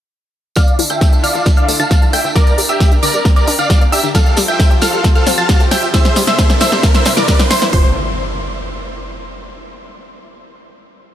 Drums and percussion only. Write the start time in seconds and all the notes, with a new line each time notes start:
0.56 kick, snare, closed hi-hat, tambourine
0.67 closed hi-hat, tambourine
0.79 open hi-hat, tambourine
0.90 closed hi-hat, tambourine
1.01 kick, snare, closed hi-hat, tambourine
1.13 closed hi-hat, tambourine
1.24 open hi-hat, tambourine
1.35 tambourine
1.46 kick, snare, closed hi-hat, tambourine
1.56 closed hi-hat, tambourine
1.68 open hi-hat, tambourine
1.80 closed hi-hat, tambourine
1.91 kick, snare, closed hi-hat, tambourine
2.02 closed hi-hat, tambourine
2.13 open hi-hat, tambourine
2.24 closed hi-hat, tambourine
2.36 kick, snare, closed hi-hat, tambourine
2.47 closed hi-hat, tambourine
2.58 open hi-hat, tambourine
2.69 closed hi-hat, tambourine
2.80 kick, snare, closed hi-hat, tambourine
2.92 closed hi-hat, tambourine
3.03 open hi-hat, tambourine
3.14 closed hi-hat, tambourine
3.25 kick, snare, closed hi-hat, tambourine
3.36 closed hi-hat, tambourine
3.47 open hi-hat, tambourine
3.58 tambourine
3.70 kick, snare, closed hi-hat, tambourine
3.81 closed hi-hat, tambourine
3.93 open hi-hat, tambourine
4.03 tambourine
4.15 kick, snare, closed hi-hat, tambourine
4.26 closed hi-hat, tambourine
4.37 snare, open hi-hat, tambourine
4.48 tambourine
4.59 kick, snare, closed hi-hat, tambourine
4.70 closed hi-hat, tambourine
4.81 snare, open hi-hat, tambourine
4.93 closed hi-hat, tambourine
5.04 kick, snare, closed hi-hat, tambourine
5.16 closed hi-hat, tambourine
5.26 snare, open hi-hat, tambourine
5.38 tambourine
5.49 kick, snare, closed hi-hat, tambourine
5.60 closed hi-hat, tambourine
5.71 snare, open hi-hat, tambourine
5.83 closed hi-hat, tambourine
5.94 kick, snare, closed hi-hat, tambourine
6.05 snare, closed hi-hat, tambourine
6.16 snare, open hi-hat, tambourine
6.27 snare, closed hi-hat, tambourine
6.38 kick, snare, closed hi-hat, tambourine
6.49 snare, closed hi-hat, tambourine
6.61 snare, open hi-hat, tambourine
6.72 snare, tambourine
6.83 kick, snare, closed hi-hat, tambourine
6.94 snare, closed hi-hat, tambourine
7.05 snare, open hi-hat, tambourine
7.17 snare, tambourine
7.28 kick, snare, closed hi-hat, tambourine
7.39 snare, closed hi-hat, tambourine
7.51 snare, open hi-hat, tambourine
7.61 snare, closed hi-hat, tambourine
7.73 kick, open hi-hat